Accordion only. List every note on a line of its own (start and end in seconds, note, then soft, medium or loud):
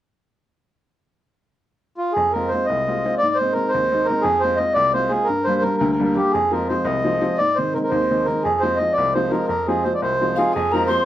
1.98 2.13 F4 medium
2.13 2.32 G#4 medium
2.32 2.50 A#4 medium
2.48 2.66 C5 medium
2.66 3.15 D#5 medium
3.18 3.38 D5 loud
3.35 3.54 C5 medium
3.53 3.71 A#4 medium
3.69 4.07 C5 medium
4.05 4.24 A#4 medium
4.21 4.42 G#4 loud
4.40 4.59 C5 medium
4.57 4.74 D#5 medium
4.74 4.92 D5 loud
4.94 5.12 C5 medium
5.09 5.28 G#4 medium
5.24 5.46 A#4 medium
5.45 5.63 C5 medium
5.61 5.76 A#4 medium
5.78 5.91 A#4 medium
5.93 6.02 A#4 medium
6.03 6.16 A#4 medium
6.16 6.32 G4 medium
6.31 6.52 G#4 medium
6.51 6.68 A#4 medium
6.69 6.87 C5 medium
6.85 7.39 D#5 medium
7.38 7.58 D5 medium
7.56 7.74 C5 medium
7.74 7.78 A#4 medium
7.84 7.91 A#4 medium
7.89 8.27 C5 medium
8.25 8.43 A#4 medium
8.43 8.62 G#4 medium
8.60 8.79 C5 medium
8.76 8.93 D#5 medium
8.93 9.13 D5 medium
9.14 9.32 C5 medium
9.31 9.46 A#4 medium
9.47 9.67 A#4 medium
9.67 9.84 G#4 medium
9.84 9.93 C5 medium
9.94 10.01 D5 medium
10.02 10.38 C5 medium
10.37 10.54 F4 medium
10.37 10.52 G#4 medium
10.54 10.73 G#4 medium
10.72 10.89 A#4 medium
10.87 11.05 C5 medium